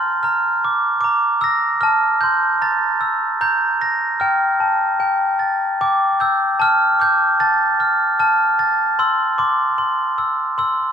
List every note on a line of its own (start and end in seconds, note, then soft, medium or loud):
0.00 0.23 A#5 medium
0.00 1.43 C6 medium
0.00 0.22 F6 medium
0.23 1.03 A#5 medium
0.23 1.05 F6 medium
0.65 0.99 D6 medium
1.01 1.83 A#5 medium
1.01 1.43 D6 medium
1.41 1.83 E6 medium
1.41 1.83 A#6 medium
1.81 2.62 A5 medium
1.81 2.23 F6 medium
2.21 2.63 C6 medium
2.21 2.62 G6 medium
2.62 3.40 A#5 medium
2.62 3.44 A6 medium
3.01 4.20 E6 medium
3.41 4.20 A#5 medium
3.41 4.23 G6 medium
3.81 4.21 A#6 medium
4.20 4.99 G5 medium
4.20 5.76 F6 medium
4.60 6.21 A5 medium
5.00 5.80 G5 medium
5.39 6.61 A6 medium
5.81 6.61 G5 medium
5.81 5.99 D6 medium
6.20 6.62 E6 medium
6.20 6.61 G6 medium
6.60 7.39 A5 medium
6.60 7.02 F6 medium
7.00 8.59 D6 medium
7.00 7.42 G6 medium
7.40 8.19 A5 medium
7.40 8.22 A6 medium
7.80 8.18 F6 medium
8.19 8.99 A5 medium
8.19 9.01 F6 medium
8.59 8.99 A6 medium
8.99 9.38 C6 medium
8.99 9.40 E6 medium
9.38 9.77 C6 medium
9.38 10.92 D6 medium
9.78 10.57 C6 medium
10.18 10.58 E6 medium
10.58 10.92 C6 medium
10.58 10.92 E6 medium